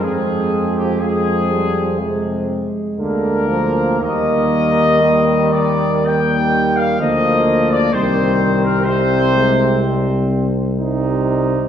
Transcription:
<<
  \new Staff \with { instrumentName = "Trumpet section" } { \time 4/4 \key ees \major \tempo 4 = 62 aes'8. g'16 aes'4. r8 bes'4 | ees''4. d''8 g''8. f''16 ees''8. d''16 | c''8. bes'16 c''4. r4. | }
  \new Staff \with { instrumentName = "Flugelhorn" } { \time 4/4 \key ees \major c'2~ c'8 r8 bes4~ | bes4 g4 g4 bes4 | c'2~ c'8 r8 ees'4 | }
  \new Staff \with { instrumentName = "Euphonium" } { \clef bass \time 4/4 \key ees \major aes4 aes8 g8 aes8 aes4 r8 | g4 bes2 bes4 | g4 g8 aes8 g8 r8 g4 | }
  \new Staff \with { instrumentName = "Trombone" } { \clef bass \time 4/4 \key ees \major f4 f4 c8 r8 d8 f8 | ees2. f4 | ees4 c4. r8 c4 | }
  \new Staff \with { instrumentName = "Tuba" } { \clef bass \time 4/4 \key ees \major f,2~ f,8 r8 d,4 | ees,2. d,4 | c,1 | }
>>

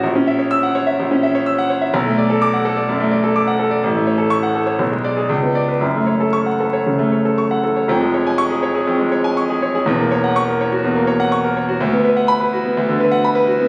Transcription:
\new Staff \with { instrumentName = "Grand piano" } { \time 4/4 \key fis \minor \tempo 4 = 124 << { r4 e'''8 r2 r8 | r4 d'''8 r2 r8 | r4 cis'''8 r4 d''8 r8 d''8 | r4 cis'''8 r2 r8 |
r4 cis'''8 r2 r8 | r4 cis'''8 r2 r8 | r4 b''8 r2 r8 | } \\ { ais,,16 cis'16 e''16 cis''8 fis''16 cis''16 e''16 ais,,16 cis'16 e''16 cis''16 e'''16 fis''16 cis''16 e''16 | b,,16 a16 d''16 a'8 fis''16 a'16 d''16 fis,16 a16 d''16 a'16 d'''16 fis''16 a'16 d''16 | a,,16 a16 cis''16 a'8 fis''16 a'16 cis''16 b,,16 gis8 gis'16 cis,16 b8 b'16 | <fis,, fis,>16 a16 cis''16 a'8 fis''16 a'16 cis''16 cis16 a16 cis''16 a'16 cis'''16 fis''16 a'16 cis''16 |
<eis,, eis,>16 gis16 cis''16 gis''8 gis'16 cis''16 gis'16 eis,16 gis16 cis''16 gis''16 cis'''16 gis'16 cis''16 gis'16 | <e,, e,>16 ais16 cis''16 fis''8 ais'16 cis''16 fis'16 e,16 ais16 cis''16 fis''16 cis'''16 ais'16 cis''16 fis'16 | d,16 b16 b'16 fis''8 b'16 fis'16 b16 d,16 d16 b'16 fis''16 b''16 b'16 fis'16 b16 | } >> }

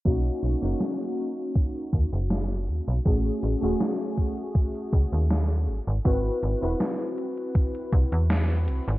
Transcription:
<<
  \new Staff \with { instrumentName = "Synth keys" } { \time 4/4 \key gis \dorian \tempo 4 = 80 <ais cis' dis' fis'>8. <ais cis' dis' fis'>2.~ <ais cis' dis' fis'>16 | <a cis' fis' gis'>8. <a cis' fis' gis'>2~ <a cis' fis' gis'>8. r8 | <bis e' fis' b'>8. <bis e' fis' b'>2.~ <bis e' fis' b'>16 | }
  \new Staff \with { instrumentName = "FM bass" } { \clef bass \time 4/4 \key gis \dorian b,,16 r16 b,,16 fis,,16 r4. dis,16 fis,,8. dis,16 b,,16 | a,,16 r16 a,,16 dis,,16 r4. cis,16 dis,8. gis,,16 gis,,16 | gis,,16 r16 gis,,16 e,,16 r4. bis,,16 e,8. bis,,16 gis,,16 | }
  \new DrumStaff \with { instrumentName = "Drums" } \drummode { \time 4/4 <hh bd>16 hh16 hh16 hh16 <hh sn>16 hh16 hh16 hh16 <hh bd>16 hh16 <hh bd>16 hh16 <hh sn>16 hh16 hh8 | <hh bd>16 hh16 hh16 hh16 <hh sn>16 hh16 <hh bd>16 hh16 <hh bd>16 hh16 <hh bd>16 hh16 <hh sn>16 hh16 hh8 | <hh bd>16 hh16 hh16 hh16 <hh sn>16 hh16 hh16 hh16 <hh bd>16 hh16 <hh bd>16 hh16 <hh sn>16 hh16 hh8 | }
>>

